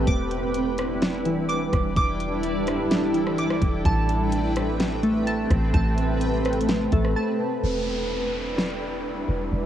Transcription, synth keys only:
0.08 D6
1.26 E3
1.49 D6
1.97 D6
3.14 E3
3.39 D6
3.85 A5
5.03 A3
5.27 A5
5.74 A5
6.93 A3
7.16 A5

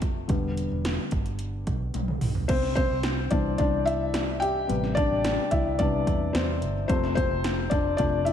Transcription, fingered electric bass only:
Already playing: F1
0.30 E1
0.71 E1
1.12 G1
1.67 B1
1.94 B1
2.22 B1
2.49 C2
2.91 C2
3.31 C2
3.60 C2
4.70 A1
5.11 A1
5.52 C2
6.07 E2
6.34 E2
6.62 G1
6.90 F1
7.31 F1
7.72 F1
7.99 F1

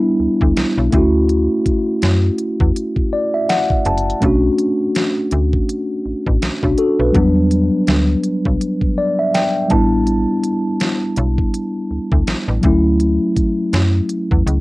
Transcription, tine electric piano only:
Already playing: G3 B3 D4 E4
0.91 A3 C#4 E4
0.96 F#4
3.13 D5
3.34 E5
3.49 F#5
3.86 A5
4.21 A3 C#4 D4
4.26 F#4
6.63 D4 F#4
6.78 F#4 A4
7.00 B4
7.12 G3 B3 D4
7.17 F#3
8.98 D5
9.19 E5
9.34 G5
9.68 G3 B3 D4 A5
9.73 E4
12.61 F#3 A3 C#4
12.66 E4

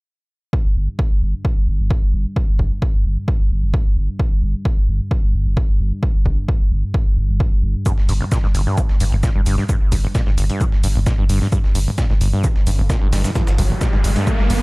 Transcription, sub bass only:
0.65 G1
0.76 G1
1.11 G1
1.22 G1
1.57 G1
1.68 G1
1.79 G1
2.02 G1
2.13 G1
2.48 G1
2.59 G1
2.94 G1
3.05 G1
3.40 G1
3.51 G1
3.63 G1
3.86 G1
3.97 G1
4.31 G1
4.42 G1
4.77 G1
4.88 G1
5.23 G1
5.34 G1
5.46 G1
5.69 G1
5.80 G1
6.15 G1
6.26 G1
6.60 G1
6.71 G1
7.06 G1
7.17 G1
7.29 G1
7.52 G1
7.63 G1
7.98 G1
8.09 G1
8.44 G1
8.55 G1
8.89 G1
9.00 G1
9.12 G1
9.35 G1
9.46 G1
9.81 G1
9.92 G1
10.27 G1
10.38 G1
10.72 G1
10.84 G1
10.95 G1
11.18 G1
11.29 G1
11.64 G1
11.75 G1
12.10 G1
12.21 G1
12.56 G1
12.67 G1
12.79 G1
13.02 G1
13.13 G1
13.47 G1
13.58 G1
13.93 G1
14.04 G1
14.39 G1
14.50 G1

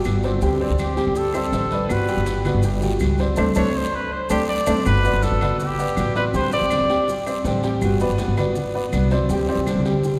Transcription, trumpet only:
0.82 G4
1.18 A4
1.36 A4
1.92 B4
3.58 C#5
3.77 C5
3.95 B4
4.13 C5
4.31 G4
4.49 D5
4.86 B4
5.23 A4
5.60 G4
6.16 B4
6.35 C5
6.53 D5

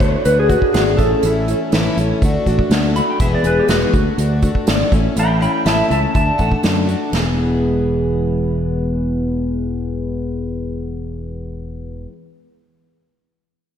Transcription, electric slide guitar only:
Already playing: C#5
0.26 B4
0.40 G#4
0.49 F#4
0.74 G#4
0.97 A4
2.96 B5
3.10 G5
3.21 E5
3.35 D5
3.47 B4
3.59 G4
3.70 F#4
5.19 G5 B5
5.42 G5 B5
5.66 E5 A5
5.91 E5 A5
6.16 A5

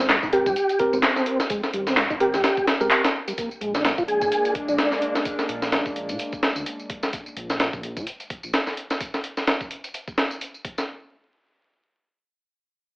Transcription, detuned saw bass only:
Already playing: G#1
0.23 G#1
0.46 G#2
0.93 G#1
1.74 G#1
2.10 G#1
2.34 G#2
2.81 C2
3.61 A#1
3.98 A#1
4.22 A#2
4.68 A#1
5.49 A#1
5.86 A#1
6.09 A#2
6.56 D2
7.37 A#1
7.73 A#1
7.97 A#2
8.44 A#1

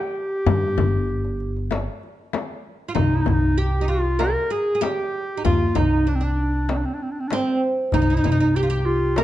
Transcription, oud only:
2.89 F4
2.95 D#4
3.58 G4
3.81 D#4
3.88 F4
4.19 A#4
4.50 G#4
4.75 G#4
4.81 G4
5.37 D#4
5.45 F4
5.75 D#4
6.07 D4
6.21 D4
7.33 C4
7.94 D#4
8.02 D#4
8.10 D#4
8.17 D#4
8.24 D#4
8.32 D#4
8.40 D#4
8.56 G4
8.63 F4
8.70 G4
9.18 A#4

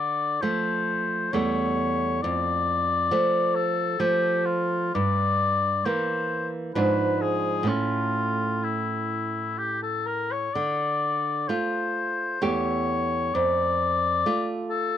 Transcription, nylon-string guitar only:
Already playing: D3
0.42 F3 A3
1.33 E2 G3 A3
2.24 F2
3.11 F3 A3
4.00 F3 A3
4.95 G2
5.85 E3 A#3
6.75 G#2 F3 D4
7.63 A2 A3 C#4
10.55 D3
11.49 A3 F4
12.42 E2 A3 G4
13.35 F2
14.26 A3 F4

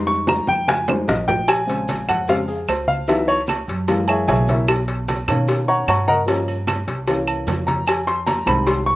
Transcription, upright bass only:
Already playing: F2
0.47 F2
1.08 A#1
2.08 F2
2.68 C#2
3.68 F#2
4.28 B1
5.28 B2
5.87 G2
6.87 C2
7.47 F2
8.46 C2

